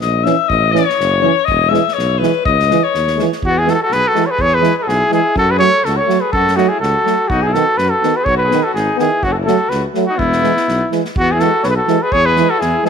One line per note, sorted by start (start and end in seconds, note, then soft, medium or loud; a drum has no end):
0.01 0.28 A#1 medium
0.01 0.25 D#5 medium
0.01 snare soft
0.23 0.35 E3 medium
0.23 0.34 C#4 medium
0.23 0.49 E5 medium
0.23 snare soft
0.48 0.76 A1 loud
0.48 0.73 D#5 loud
0.48 kick medium
0.71 0.83 E3 medium
0.71 0.82 C#4 medium
0.71 1.46 C#5 medium
0.71 snare soft
0.89 snare soft
0.99 1.26 F#1 medium
0.99 snare soft
1.20 1.32 E3 medium
1.20 1.31 C#4 medium
1.45 1.70 D#5 loud
1.45 kick medium
1.49 1.75 E1 loud
1.69 1.81 E3 medium
1.69 1.79 G#3 medium
1.69 1.95 E5 medium
1.74 snare soft
1.88 snare soft
1.93 2.20 C#5 medium
1.98 2.24 B1 loud
1.98 snare soft
2.18 2.31 E3 medium
2.18 2.31 G#3 medium
2.18 2.43 B4 medium
2.23 snare soft
2.45 2.73 C#2 loud
2.45 2.85 D#5 loud
2.45 kick loud
2.59 snare soft
2.68 2.81 E3 medium
2.68 2.78 G#3 medium
2.68 snare soft
2.84 3.31 C#5 medium
2.94 3.21 D#2 medium
2.94 snare soft
3.08 snare soft
3.16 3.26 G#3 medium
3.16 snare soft
3.20 3.29 E3 medium
3.32 snare soft
3.42 3.69 E2 medium
3.42 3.60 F#4 loud
3.42 kick medium
3.48 3.62 B3 medium
3.58 3.70 E4 medium
3.58 3.71 G#4 medium
3.65 3.76 E3 medium
3.65 3.75 G#3 soft
3.65 3.73 F#4 medium
3.65 snare soft
3.70 3.79 F#4 medium
3.70 3.73 A4 medium
3.70 3.79 A4 medium
3.83 3.96 F#4 medium
3.83 3.94 A4 medium
3.91 4.04 B1 medium
3.91 4.10 B4 loud
3.91 snare soft
3.95 4.10 G#4 medium
4.08 4.25 F#4 medium
4.08 4.28 A4 medium
4.13 4.25 E3 medium
4.13 4.23 G#3 medium
4.13 snare soft
4.24 4.30 A4 medium
4.24 4.32 C#5 medium
4.28 4.42 G#4 medium
4.28 4.43 B4 medium
4.39 4.65 E2 medium
4.39 4.57 G#4 medium
4.39 4.56 C#5 loud
4.39 kick medium
4.54 4.79 G#4 medium
4.54 4.77 B4 loud
4.61 4.71 E3 medium
4.61 4.71 G#3 medium
4.61 snare soft
4.77 4.88 G#4 medium
4.77 4.80 B4 medium
4.83 4.89 A4 medium
4.87 5.01 B1 medium
4.87 4.93 F#4 medium
4.87 5.11 G#4 medium
4.87 snare soft
4.91 5.13 E4 medium
5.10 5.21 E3 medium
5.10 5.20 G#3 medium
5.10 5.35 G#4 loud
5.10 snare soft
5.15 5.36 E4 medium
5.35 5.62 F#2 medium
5.35 5.52 A4 loud
5.35 kick medium
5.39 5.55 F#4 medium
5.51 5.62 G#4 medium
5.51 5.58 B4 medium
5.59 5.69 F#3 medium
5.59 5.69 A3 medium
5.59 5.86 C#5 loud
5.59 snare soft
5.68 5.91 A4 medium
5.85 5.98 C#2 medium
5.85 5.98 A4 loud
5.85 snare soft
5.89 6.02 F#4 medium
5.97 6.23 A4 medium
5.97 6.22 C#5 loud
6.06 6.18 F#3 medium
6.06 6.16 A3 medium
6.06 snare soft
6.21 6.32 G#4 medium
6.21 6.32 B4 medium
6.32 6.60 F#2 medium
6.32 6.58 F#4 medium
6.32 6.58 A4 loud
6.32 kick medium
6.48 snare soft
6.56 6.67 F#3 medium
6.56 6.66 A3 medium
6.56 6.71 D#4 medium
6.56 6.70 F#4 medium
6.56 snare soft
6.69 6.81 E4 medium
6.69 6.79 G#4 medium
6.80 6.94 C#2 medium
6.80 7.32 F#4 medium
6.80 7.30 A4 medium
6.80 snare soft
7.05 7.14 F#3 soft
7.05 7.14 A3 soft
7.05 snare soft
7.29 7.56 B1 medium
7.29 7.49 D#4 medium
7.29 7.44 F#4 medium
7.29 kick medium
7.42 7.55 G#4 medium
7.47 7.57 E4 medium
7.53 7.63 D#3 medium
7.53 7.64 B3 medium
7.53 7.81 F#4 medium
7.53 7.79 A4 medium
7.53 snare soft
7.77 7.91 F#2 medium
7.77 7.95 F#4 medium
7.77 7.91 B4 medium
7.77 snare soft
7.90 8.18 A4 medium
7.95 8.22 F#4 medium
8.02 8.12 D#3 medium
8.02 8.12 B3 medium
8.02 snare soft
8.16 8.30 G#4 medium
8.16 8.26 B4 medium
8.24 8.53 B1 medium
8.24 8.37 C#5 loud
8.24 kick medium
8.29 8.40 F#4 medium
8.38 8.65 B4 medium
8.44 8.67 G#4 medium
8.49 8.62 D#3 medium
8.49 8.59 B3 medium
8.49 snare soft
8.63 8.76 F#4 medium
8.63 8.74 A4 medium
8.74 8.88 G#1 medium
8.74 8.99 D#4 medium
8.74 8.97 G#4 medium
8.74 snare soft
8.96 9.09 D#3 medium
8.96 9.06 B3 medium
8.96 9.25 G#4 medium
8.96 snare soft
9.02 9.26 E4 medium
9.23 9.50 F#1 medium
9.23 9.35 C#4 medium
9.23 9.34 F#4 medium
9.23 kick medium
9.32 9.40 F#4 soft
9.32 9.34 A4 medium
9.38 9.50 E4 medium
9.44 9.57 F#3 medium
9.44 9.56 A3 medium
9.44 9.71 A4 loud
9.44 snare soft
9.49 9.72 F#4 medium
9.69 9.84 C#2 medium
9.69 9.85 F#4 medium
9.69 9.83 B4 medium
9.69 snare soft
9.94 10.05 F#3 medium
9.94 10.04 A3 medium
9.94 snare soft
10.06 10.17 D#4 medium
10.06 10.20 F#4 medium
10.16 10.46 E1 medium
10.16 10.90 B3 medium
10.16 10.91 E4 loud
10.16 kick medium
10.32 snare soft
10.42 10.52 E3 medium
10.42 10.52 G#3 medium
10.42 snare soft
10.57 snare soft
10.68 10.81 B1 medium
10.68 snare soft
10.91 11.01 E3 soft
10.91 11.01 G#3 soft
10.91 snare soft
11.05 snare soft
11.16 11.43 E2 medium
11.16 11.35 B3 medium
11.16 11.33 F#4 loud
11.16 kick loud
11.32 11.45 E4 medium
11.32 11.42 G#4 medium
11.39 11.49 E3 medium
11.39 11.51 G#3 medium
11.39 11.65 A4 loud
11.39 snare soft
11.43 11.68 F#4 medium
11.63 11.78 B1 loud
11.63 11.70 A4 medium
11.63 11.69 B4 medium
11.63 11.67 C#5 medium
11.63 snare soft
11.69 11.71 G#4 medium
11.69 11.75 G#4 medium
11.69 11.76 B4 medium
11.76 12.04 F#4 medium
11.76 12.04 A4 medium
11.87 11.97 E3 medium
11.87 11.98 G#3 medium
11.87 snare soft
12.02 12.10 G#4 medium
12.02 12.14 B4 medium
12.10 12.40 E2 medium
12.10 12.23 G#4 loud
12.10 12.27 C#5 loud
12.10 kick medium
12.23 12.52 G#4 medium
12.23 12.51 B4 medium
12.36 12.46 E3 medium
12.36 12.48 G#3 medium
12.36 snare soft
12.50 12.60 F#4 medium
12.50 12.62 A4 medium
12.58 12.74 E2 medium
12.58 12.83 E4 medium
12.58 12.84 G#4 medium
12.58 snare soft
12.84 12.89 E3 medium
12.84 12.89 G#3 medium
12.84 12.89 E4 medium
12.84 snare soft